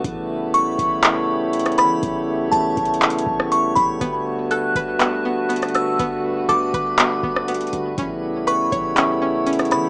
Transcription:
0.00 7.94 A3 medium
0.00 7.94 B3 medium
0.04 0.76 A1 loud
0.04 3.97 C#3 medium
0.04 9.89 G3 medium
0.04 3.97 E4 medium
0.04 3.97 G4 medium
0.04 3.97 C#5 medium
0.04 2.01 B5 medium
0.04 kick loud
0.04 closed hi-hat medium
0.54 1.74 C#6 medium
0.54 closed hi-hat medium
0.79 1.80 A1 loud
0.79 kick medium
0.79 closed hi-hat medium
1.03 clap loud
1.03 closed hi-hat medium
1.53 closed hi-hat medium
1.59 closed hi-hat medium
1.66 cross-stick loud
1.66 closed hi-hat medium
1.72 closed hi-hat soft
1.78 2.02 E3 loud
1.78 2.02 B5 medium
1.78 cross-stick loud
1.78 closed hi-hat medium
2.03 2.50 A1 loud
2.03 3.99 C#6 medium
2.03 kick loud
2.03 closed hi-hat medium
2.52 2.76 A1 loud
2.52 3.47 A5 medium
2.52 closed hi-hat medium
2.77 3.25 A1 loud
2.77 kick medium
2.77 closed hi-hat soft
2.85 closed hi-hat medium
2.94 closed hi-hat medium
3.02 clap loud
3.02 closed hi-hat medium
3.10 closed hi-hat medium
3.19 closed hi-hat medium
3.27 3.74 A1 loud
3.27 kick loud
3.40 cross-stick loud
3.52 3.75 C#6 medium
3.52 closed hi-hat medium
3.75 4.00 A1 loud
3.75 3.99 B5 medium
3.75 kick loud
3.75 closed hi-hat medium
4.01 4.73 G1 loud
4.01 7.94 D3 medium
4.01 4.99 B3 loud
4.01 7.94 F#4 medium
4.01 7.94 B4 medium
4.01 5.98 A5 medium
4.01 kick loud
4.01 closed hi-hat medium
4.51 6.00 A4 medium
4.51 5.71 F#6 medium
4.51 closed hi-hat medium
4.75 5.95 G1 loud
4.75 6.25 B4 medium
4.75 kick medium
4.75 closed hi-hat medium
5.00 5.24 B3 medium
5.00 clap loud
5.00 closed hi-hat medium
5.25 5.48 B3 medium
5.49 5.98 B3 medium
5.49 closed hi-hat medium
5.56 closed hi-hat medium
5.62 cross-stick medium
5.62 closed hi-hat medium
5.69 closed hi-hat soft
5.75 5.98 E6 medium
5.75 cross-stick loud
5.75 closed hi-hat medium
5.99 6.47 G1 loud
5.99 6.98 B3 loud
5.99 7.96 B5 medium
5.99 kick loud
5.99 closed hi-hat medium
6.49 6.73 G1 loud
6.49 7.98 A4 medium
6.49 7.44 D6 medium
6.49 closed hi-hat medium
6.74 7.21 G1 loud
6.74 7.98 B4 medium
6.74 kick medium
6.74 closed hi-hat medium
6.99 7.22 B3 medium
6.99 clap loud
6.99 closed hi-hat medium
7.23 7.71 G1 loud
7.23 7.47 B3 medium
7.23 kick loud
7.36 cross-stick loud
7.48 7.98 B3 medium
7.48 closed hi-hat medium
7.54 closed hi-hat medium
7.61 closed hi-hat medium
7.67 closed hi-hat soft
7.73 7.97 G1 loud
7.73 closed hi-hat medium
7.98 8.69 A1 loud
7.98 9.89 C#3 medium
7.98 9.89 A3 medium
7.98 9.89 B3 medium
7.98 8.96 C#4 medium
7.98 9.89 E4 loud
7.98 9.89 G4 medium
7.98 9.89 C#5 medium
7.98 9.89 B5 medium
7.98 kick loud
7.98 closed hi-hat medium
8.47 9.89 B4 loud
8.47 9.67 C#6 medium
8.47 closed hi-hat medium
8.72 9.73 A1 loud
8.72 9.89 C#5 medium
8.72 kick medium
8.72 closed hi-hat medium
8.97 9.20 C#4 loud
8.97 clap loud
8.97 closed hi-hat medium
9.22 9.45 C#4 medium
9.46 9.89 C#4 medium
9.46 closed hi-hat medium
9.53 closed hi-hat medium
9.59 cross-stick loud
9.59 closed hi-hat soft
9.65 closed hi-hat soft
9.71 9.89 E3 loud
9.71 9.89 B5 medium
9.71 cross-stick loud
9.71 closed hi-hat medium

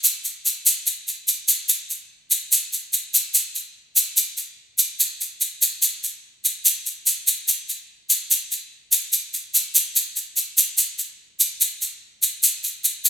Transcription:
0.04 shaker medium
0.25 shaker soft
0.46 shaker soft
0.66 shaker medium
0.87 shaker medium
1.08 shaker soft
1.28 shaker soft
1.48 shaker medium
1.69 shaker medium
1.90 shaker soft
2.31 shaker medium
2.52 shaker medium
2.73 shaker soft
2.93 shaker medium
3.14 shaker medium
3.34 shaker medium
3.55 shaker soft
3.96 shaker medium
4.17 shaker medium
4.37 shaker soft
4.79 shaker medium
5.00 shaker medium
5.21 shaker soft
5.41 shaker soft
5.62 shaker medium
5.82 shaker medium
6.04 shaker soft
6.45 shaker medium
6.65 shaker medium
6.86 shaker soft
7.07 shaker soft
7.27 shaker medium
7.48 shaker soft
7.69 shaker soft
8.10 shaker medium
8.31 shaker medium
8.52 shaker soft
8.92 shaker medium
9.13 shaker soft
9.34 shaker soft
9.54 shaker medium
9.75 shaker medium
9.96 shaker medium
10.16 shaker soft
10.37 shaker soft
10.58 shaker medium
10.78 shaker medium
10.99 shaker soft
11.40 shaker medium
11.61 shaker medium
11.82 shaker soft
12.23 shaker medium
12.43 shaker medium
12.64 shaker soft
12.84 shaker medium
13.05 shaker medium

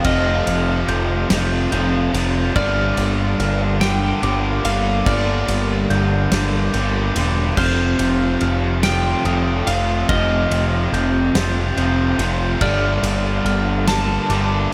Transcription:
0.00 2.52 D#3 medium
0.00 2.52 A3 medium
0.00 2.52 C4 medium
0.00 12.57 F4 medium
0.00 2.52 A4 medium
0.04 0.41 F1 loud
0.04 1.28 F2 medium
0.04 1.29 C3 medium
0.04 1.30 F3 loud
0.04 2.10 D#5 medium
0.04 0.88 F6 loud
0.04 kick loud
0.04 ride loud
0.47 0.83 F1 loud
0.47 ride medium
0.88 1.24 F1 loud
0.88 1.71 G6 medium
0.88 ride medium
1.29 1.66 F1 loud
1.29 1.70 F2 loud
1.29 1.71 C3 loud
1.29 1.73 F3 loud
1.29 snare loud
1.29 ride loud
1.72 2.08 F1 loud
1.72 2.12 F2 medium
1.72 2.12 C3 loud
1.72 2.14 F3 loud
1.72 2.56 G6 medium
1.72 ride medium
2.13 2.50 F1 loud
2.13 2.53 F2 medium
2.13 2.53 C3 medium
2.13 2.56 F3 medium
2.13 ride medium
2.55 2.92 G1 loud
2.55 3.79 G2 loud
2.55 7.53 D3 medium
2.55 3.80 D3 medium
2.55 7.54 G3 medium
2.55 3.81 G3 loud
2.55 7.54 A#3 medium
2.55 7.53 A#4 medium
2.55 3.85 D5 loud
2.55 3.38 F6 loud
2.55 kick loud
2.55 ride loud
2.97 3.34 G1 loud
2.97 ride medium
3.39 4.12 G1 medium
3.39 4.23 F6 medium
3.39 ride medium
3.81 4.21 G2 medium
3.81 4.22 D3 loud
3.81 4.22 G3 loud
3.81 4.65 G5 loud
3.81 snare loud
3.81 ride loud
4.22 4.59 G1 medium
4.22 4.63 G2 medium
4.22 4.64 D3 medium
4.22 4.64 G3 loud
4.22 5.07 D6 medium
4.22 ride medium
4.64 5.01 G1 medium
4.64 5.05 G2 medium
4.64 5.06 D3 medium
4.64 5.06 G3 medium
4.64 5.08 F5 loud
4.64 ride medium
5.06 5.43 G1 loud
5.06 6.30 G2 medium
5.06 6.31 D3 loud
5.06 6.31 G3 medium
5.06 7.12 D5 loud
5.06 5.90 F6 loud
5.06 kick loud
5.06 ride loud
5.48 5.85 G1 medium
5.48 ride medium
5.90 6.26 G1 medium
5.90 6.73 G6 medium
5.90 ride medium
6.32 6.68 G1 medium
6.32 6.72 G2 medium
6.32 6.73 D3 loud
6.32 6.73 G3 loud
6.32 snare loud
6.32 ride loud
6.74 7.10 G1 medium
6.74 7.14 G2 medium
6.74 7.15 D3 medium
6.74 7.15 G3 medium
6.74 7.58 G6 medium
6.74 ride medium
7.15 7.52 E1 medium
7.15 7.55 G2 medium
7.15 7.55 D3 medium
7.15 7.56 G3 medium
7.15 ride medium
7.56 7.94 F1 loud
7.56 8.82 F2 medium
7.56 8.82 C3 loud
7.56 12.56 D#3 medium
7.56 8.84 F3 medium
7.56 12.56 A3 medium
7.56 12.56 C4 medium
7.56 10.06 A4 medium
7.56 8.79 C5 loud
7.56 8.40 F6 loud
7.56 kick loud
7.56 crash loud
7.99 8.36 F1 medium
7.99 ride medium
8.41 9.14 F1 medium
8.41 9.25 F6 medium
8.41 ride medium
8.83 9.23 F2 loud
8.83 9.24 C3 loud
8.83 9.25 F3 loud
8.83 9.66 G5 loud
8.83 snare loud
8.83 ride loud
9.24 9.61 F1 medium
9.24 9.66 F2 medium
9.24 9.66 C3 medium
9.24 9.68 F3 loud
9.24 10.09 D#6 medium
9.24 ride medium
9.67 10.03 F1 medium
9.67 10.08 F2 medium
9.67 10.08 C3 medium
9.67 10.10 F3 medium
9.67 10.10 F5 loud
9.67 ride medium
10.07 10.45 F1 loud
10.07 11.34 F2 medium
10.07 11.35 C3 medium
10.07 11.36 F3 loud
10.07 12.58 G4 medium
10.07 12.15 D#5 loud
10.07 10.93 F6 loud
10.07 kick loud
10.07 ride loud
10.51 10.87 F1 medium
10.51 ride medium
10.93 11.29 F1 medium
10.93 11.76 G6 medium
10.93 ride medium
11.35 11.71 F1 loud
11.35 11.75 F2 loud
11.35 11.76 C3 loud
11.35 11.78 F3 loud
11.35 snare loud
11.35 ride loud
11.77 12.13 F1 medium
11.77 12.18 F2 medium
11.77 12.18 C3 medium
11.77 12.20 F3 loud
11.77 12.61 G6 medium
11.77 ride medium
12.19 12.55 F1 loud
12.19 12.59 F2 medium
12.19 12.59 C3 medium
12.19 12.62 F3 medium
12.19 ride medium
12.60 12.98 G1 loud
12.60 13.87 G2 medium
12.60 14.73 D3 medium
12.60 13.87 D3 loud
12.60 14.73 G3 medium
12.60 13.88 G3 loud
12.60 14.73 A#3 medium
12.60 14.73 F4 medium
12.60 14.73 A#4 medium
12.60 13.92 D5 loud
12.60 13.45 F6 loud
12.60 kick loud
12.60 ride loud
13.03 13.39 G1 loud
13.03 ride medium
13.45 14.18 G1 medium
13.45 14.30 F6 medium
13.45 ride medium
13.88 14.29 G2 loud
13.88 14.29 D3 loud
13.88 14.30 G3 loud
13.88 14.73 A5 loud
13.88 snare loud
13.88 ride loud
14.29 14.66 G1 loud
14.29 14.71 G2 medium
14.29 14.71 D3 loud
14.29 14.72 G3 loud
14.29 14.73 D6 medium
14.29 ride loud

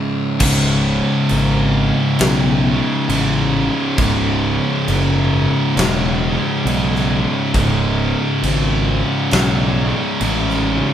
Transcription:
0.00 0.38 C#2 medium
0.00 0.39 C#2 medium
0.00 0.39 G#2 medium
0.00 0.40 C#3 medium
0.40 1.00 C#1 loud
0.40 2.76 C#2 medium
0.40 2.18 C#2 medium
0.40 3.64 C#2 medium
0.40 2.71 G#2 loud
0.40 2.18 G#2 medium
0.40 3.61 G#2 medium
0.40 3.62 C#3 loud
0.40 2.72 C#3 loud
0.40 2.22 C#3 medium
0.40 kick loud
0.40 crash loud
0.40 crash medium
1.29 1.90 G#1 loud
1.29 crash medium
2.19 2.79 B1 loud
2.19 3.97 C#2 medium
2.19 3.97 G#2 medium
2.19 4.00 C#3 loud
2.19 snare loud
2.19 crash medium
2.73 3.07 C#2 medium
2.73 3.07 G#2 medium
2.73 3.11 C#3 loud
3.07 3.68 A1 loud
3.07 3.96 C#2 medium
3.07 3.96 G#2 medium
3.07 4.00 C#3 medium
3.07 crash medium
3.62 3.97 C#2 medium
3.62 3.96 G#2 medium
3.62 4.00 C#3 medium
3.96 4.57 C#1 loud
3.96 6.33 C#2 loud
3.96 5.75 C#2 medium
3.96 7.21 C#2 medium
3.96 7.17 G#2 loud
3.96 6.28 G#2 loud
3.96 5.75 G#2 medium
3.96 7.19 C#3 loud
3.96 6.29 C#3 loud
3.96 kick loud
3.96 crash medium
4.01 5.79 C#3 medium
4.88 5.47 F#1 loud
4.88 crash medium
5.76 6.35 E1 loud
5.76 7.53 C#2 medium
5.76 7.53 G#2 medium
5.76 7.56 C#3 medium
5.76 snare loud
5.76 crash medium
6.29 6.64 C#2 medium
6.29 6.64 G#2 medium
6.29 6.68 C#3 loud
6.64 7.24 B1 loud
6.64 7.53 C#2 medium
6.64 7.53 G#2 medium
6.64 crash medium
6.68 7.56 C#3 loud
6.95 snare soft
7.19 7.52 C#2 medium
7.19 7.52 G#2 medium
7.19 7.55 C#3 medium
7.53 8.13 C#1 loud
7.53 10.76 C#2 loud
7.53 9.87 C#2 loud
7.53 9.31 C#2 medium
7.53 10.72 G#2 medium
7.53 9.31 G#2 medium
7.53 9.84 G#2 loud
7.53 10.74 C#3 loud
7.53 9.35 C#3 loud
7.53 9.84 C#3 loud
7.53 kick loud
7.53 crash medium
8.43 9.02 G#1 loud
8.43 crash medium
9.31 9.91 B1 loud
9.31 10.93 C#2 medium
9.31 10.93 G#2 medium
9.31 10.93 C#3 medium
9.31 snare loud
9.31 crash medium
9.84 10.20 C#2 medium
9.84 10.19 G#2 medium
9.84 10.24 C#3 medium
10.20 10.80 A1 loud
10.20 10.93 C#2 medium
10.20 10.93 G#2 loud
10.20 10.93 C#3 medium
10.20 crash medium
10.50 snare soft
10.75 10.93 C#2 medium
10.75 10.93 G#2 medium
10.75 10.93 C#3 medium

